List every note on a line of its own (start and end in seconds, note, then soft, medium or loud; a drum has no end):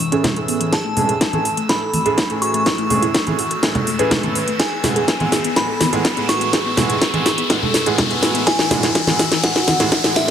0.00 0.63 C#6 medium
0.00 10.30 E6 medium
0.00 open hi-hat loud
0.00 riser medium
0.12 0.21 A2 medium
0.12 0.21 E3 medium
0.12 0.21 A3 medium
0.12 0.18 C#4 medium
0.12 0.21 C#4 medium
0.12 0.21 G#4 medium
0.12 closed hi-hat soft
0.24 kick loud
0.24 snare medium
0.24 closed hi-hat medium
0.24 low conga medium
0.36 0.94 A2 medium
0.36 0.43 E3 medium
0.36 0.94 E3 medium
0.36 0.94 A3 medium
0.36 0.94 C#4 medium
0.36 0.94 G#4 medium
0.36 closed hi-hat soft
0.48 0.55 B3 medium
0.48 open hi-hat loud
0.61 0.67 E3 medium
0.61 closed hi-hat medium
0.72 0.79 G#4 loud
0.72 1.60 A5 medium
0.72 kick loud
0.72 snare medium
0.72 closed hi-hat medium
0.85 0.91 A3 medium
0.97 1.11 A2 medium
0.97 1.11 E3 medium
0.97 1.03 A3 medium
0.97 1.11 A3 medium
0.97 1.11 C#4 medium
0.97 1.11 G#4 medium
0.97 open hi-hat loud
0.97 low conga medium
1.09 1.15 G#4 medium
1.09 closed hi-hat soft
1.21 1.27 A3 medium
1.21 kick loud
1.21 snare medium
1.21 closed hi-hat medium
1.33 1.42 A2 medium
1.33 1.42 E3 medium
1.33 1.39 A3 medium
1.33 1.42 A3 medium
1.33 1.42 C#4 medium
1.33 1.42 G#4 medium
1.33 closed hi-hat soft
1.33 high conga medium
1.45 1.51 A4 medium
1.45 open hi-hat loud
1.57 1.64 A3 medium
1.57 closed hi-hat soft
1.69 1.78 A2 medium
1.69 1.78 E3 medium
1.69 1.78 A3 medium
1.69 1.78 C#4 medium
1.69 1.78 G#4 medium
1.69 2.32 B5 medium
1.69 kick loud
1.69 snare medium
1.69 closed hi-hat medium
1.81 1.88 A4 medium
1.93 2.00 A3 medium
1.93 open hi-hat loud
1.93 high conga medium
2.06 2.15 A2 medium
2.06 2.15 E3 medium
2.06 2.15 A3 medium
2.06 2.15 C#4 medium
2.06 2.12 G#4 medium
2.06 2.15 G#4 medium
2.06 closed hi-hat soft
2.18 2.24 A3 medium
2.18 kick loud
2.18 snare medium
2.18 closed hi-hat medium
2.30 2.87 A2 medium
2.30 2.87 E3 medium
2.30 2.36 A3 medium
2.30 2.87 A3 medium
2.30 2.87 C#4 medium
2.30 2.87 G#4 medium
2.30 closed hi-hat soft
2.42 2.48 F#4 medium
2.42 4.50 C#6 medium
2.42 open hi-hat loud
2.54 2.60 A3 medium
2.54 closed hi-hat soft
2.66 2.72 E4 loud
2.66 kick loud
2.66 snare medium
2.66 closed hi-hat medium
2.78 2.85 A3 medium
2.78 closed hi-hat soft
2.90 3.05 A2 medium
2.90 3.05 E3 medium
2.90 2.97 A3 medium
2.90 3.05 A3 medium
2.90 3.05 C#4 medium
2.90 3.05 G#4 medium
2.90 open hi-hat loud
2.90 low conga medium
3.02 3.09 E4 medium
3.02 closed hi-hat soft
3.14 kick loud
3.14 snare medium
3.14 closed hi-hat medium
3.27 3.36 A2 medium
3.27 3.36 E3 medium
3.27 3.33 A3 medium
3.27 3.36 A3 medium
3.27 3.35 C#4 medium
3.27 3.35 G#4 medium
3.27 closed hi-hat soft
3.27 high conga medium
3.39 3.45 F#4 medium
3.39 open hi-hat loud
3.51 3.57 A3 medium
3.51 closed hi-hat soft
3.63 3.72 A2 medium
3.63 3.72 E3 medium
3.63 3.69 A3 medium
3.63 3.72 A3 medium
3.63 3.72 C#4 medium
3.63 3.72 G#4 medium
3.63 kick loud
3.63 snare medium
3.63 closed hi-hat medium
3.75 3.81 A4 medium
3.75 kick medium
3.75 closed hi-hat soft
3.75 low conga medium
3.87 3.93 A3 medium
3.87 open hi-hat loud
3.99 4.21 A2 medium
3.99 4.21 E3 medium
3.99 4.21 A3 medium
3.99 4.21 C#4 medium
3.99 4.21 G#4 loud
3.99 4.06 B4 medium
3.99 closed hi-hat soft
4.11 4.18 A3 medium
4.11 kick loud
4.11 snare medium
4.11 closed hi-hat medium
4.11 low conga medium
4.23 4.38 A2 medium
4.23 4.38 E3 medium
4.23 4.38 A3 medium
4.23 4.30 A3 medium
4.23 4.38 C#4 medium
4.23 4.38 A4 loud
4.23 closed hi-hat soft
4.23 high conga medium
4.35 4.42 B4 medium
4.35 open hi-hat loud
4.48 4.54 A3 medium
4.48 closed hi-hat soft
4.60 4.66 G#4 loud
4.60 5.47 G#5 medium
4.60 kick loud
4.60 snare medium
4.60 closed hi-hat medium
4.72 4.78 B3 medium
4.83 4.98 A2 medium
4.83 4.98 E3 medium
4.83 4.98 G#3 medium
4.83 4.90 B3 medium
4.83 4.98 B3 medium
4.83 4.98 G#4 medium
4.83 snare medium
4.83 open hi-hat loud
4.83 low conga medium
4.96 5.02 G#4 medium
4.96 closed hi-hat soft
5.08 5.14 B3 medium
5.08 kick loud
5.08 snare medium
5.08 closed hi-hat medium
5.20 5.29 A2 medium
5.20 5.29 E3 medium
5.20 5.29 G#3 medium
5.20 5.26 B3 medium
5.20 5.29 B3 medium
5.20 5.29 G#4 medium
5.20 closed hi-hat soft
5.20 high conga medium
5.32 5.39 G#4 medium
5.32 snare medium
5.32 open hi-hat loud
5.44 5.51 B3 medium
5.44 closed hi-hat soft
5.56 5.65 A2 medium
5.56 5.65 E3 medium
5.56 5.65 G#3 medium
5.56 5.65 B3 medium
5.56 5.65 G#4 medium
5.56 6.19 B5 medium
5.56 kick loud
5.56 snare medium
5.56 closed hi-hat medium
5.69 5.75 A4 medium
5.80 5.87 B3 medium
5.80 snare medium
5.80 open hi-hat loud
5.80 high conga medium
5.93 6.02 A2 medium
5.93 6.02 E3 medium
5.93 6.02 G#3 medium
5.93 6.02 B3 medium
5.93 5.99 G#4 loud
5.93 6.02 G#4 medium
5.93 closed hi-hat soft
6.05 6.11 B3 medium
6.05 kick loud
6.05 snare medium
6.05 closed hi-hat medium
6.17 6.74 A2 medium
6.17 6.74 E3 medium
6.17 6.74 G#3 medium
6.17 6.23 B3 medium
6.17 6.74 B3 medium
6.17 6.74 G#4 medium
6.17 closed hi-hat soft
6.29 6.35 F#4 medium
6.29 8.37 C#6 loud
6.29 snare medium
6.29 open hi-hat loud
6.41 6.47 B3 medium
6.41 closed hi-hat soft
6.53 6.60 G#4 loud
6.53 kick loud
6.53 snare medium
6.53 closed hi-hat medium
6.65 6.72 B3 medium
6.77 6.92 A2 medium
6.77 6.92 E3 medium
6.77 6.92 G#3 medium
6.77 6.84 B3 medium
6.77 6.92 B3 medium
6.77 6.92 G#4 medium
6.77 snare medium
6.77 open hi-hat loud
6.77 low conga medium
6.90 6.96 G#4 medium
6.90 closed hi-hat soft
7.02 7.08 B3 medium
7.02 kick loud
7.02 snare medium
7.02 closed hi-hat medium
7.13 7.23 A2 medium
7.13 7.23 E3 medium
7.13 7.23 G#3 medium
7.13 7.23 B3 medium
7.13 7.20 B3 medium
7.13 7.23 G#4 medium
7.13 closed hi-hat soft
7.13 high conga medium
7.26 7.32 G#4 medium
7.26 snare medium
7.26 open hi-hat loud
7.38 7.44 B3 medium
7.38 closed hi-hat medium
7.50 7.59 A2 medium
7.50 7.59 E3 medium
7.50 7.59 G#3 medium
7.50 7.56 B3 medium
7.50 7.59 B3 medium
7.50 7.59 G#4 medium
7.50 kick loud
7.50 snare medium
7.50 closed hi-hat medium
7.62 7.68 A4 medium
7.62 low conga medium
7.74 7.81 B3 medium
7.74 snare medium
7.74 open hi-hat loud
7.86 7.95 A2 medium
7.86 7.95 E3 medium
7.86 7.95 G#3 medium
7.86 7.95 B3 medium
7.86 7.93 G#4 medium
7.86 7.95 G#4 loud
7.86 closed hi-hat medium
7.98 8.05 B3 medium
7.98 kick loud
7.98 snare medium
7.98 closed hi-hat medium
7.98 low conga medium
8.10 8.68 A2 medium
8.10 8.68 E3 medium
8.10 8.68 G#3 medium
8.10 8.68 B3 medium
8.10 8.17 B3 medium
8.10 8.68 G#4 medium
8.10 closed hi-hat soft
8.22 8.29 F#4 medium
8.22 snare medium
8.22 open hi-hat loud
8.35 8.41 B3 medium
8.35 closed hi-hat medium
8.47 8.53 E4 loud
8.47 9.34 G#5 loud
8.47 kick loud
8.47 snare medium
8.47 closed hi-hat medium
8.59 8.65 E3 medium
8.59 snare medium
8.70 8.85 A2 medium
8.70 8.85 E3 medium
8.70 8.77 E3 medium
8.70 8.85 G#3 medium
8.70 8.85 B3 medium
8.70 8.85 G#4 medium
8.70 snare medium
8.70 open hi-hat loud
8.70 low conga medium
8.83 8.89 E4 medium
8.83 snare medium
8.83 closed hi-hat medium
8.95 9.02 E3 medium
8.95 kick loud
8.95 snare medium
8.95 closed hi-hat medium
9.07 9.16 A2 medium
9.07 9.14 E3 medium
9.07 9.16 E3 medium
9.07 9.16 G#3 medium
9.07 9.16 B3 medium
9.07 9.16 G#4 medium
9.07 snare medium
9.07 closed hi-hat soft
9.07 high conga medium
9.19 9.26 F#4 loud
9.19 snare medium
9.19 open hi-hat loud
9.31 9.38 E3 medium
9.31 snare medium
9.31 closed hi-hat medium
9.43 9.53 A2 medium
9.43 9.53 E3 medium
9.43 9.53 G#3 medium
9.43 9.53 B3 medium
9.43 9.53 G#4 loud
9.43 10.06 F#5 loud
9.43 kick loud
9.43 snare loud
9.43 closed hi-hat medium
9.56 9.62 F#4 medium
9.56 snare medium
9.68 9.74 E3 medium
9.68 snare loud
9.68 open hi-hat loud
9.68 high conga medium
9.80 9.89 A2 medium
9.80 9.89 E3 medium
9.80 9.89 G#3 medium
9.80 9.89 B3 medium
9.80 9.86 E4 medium
9.80 9.89 G#4 loud
9.80 snare medium
9.80 closed hi-hat medium
9.92 9.98 E3 medium
9.92 kick loud
9.92 snare loud
9.92 closed hi-hat medium
10.04 10.30 A2 medium
10.04 10.10 E3 medium
10.04 10.30 E3 medium
10.04 10.30 G#3 medium
10.04 10.30 B3 medium
10.04 10.30 G#4 medium
10.04 snare medium
10.04 closed hi-hat soft
10.16 10.22 D4 medium
10.16 10.30 E5 loud
10.16 snare loud
10.16 open hi-hat loud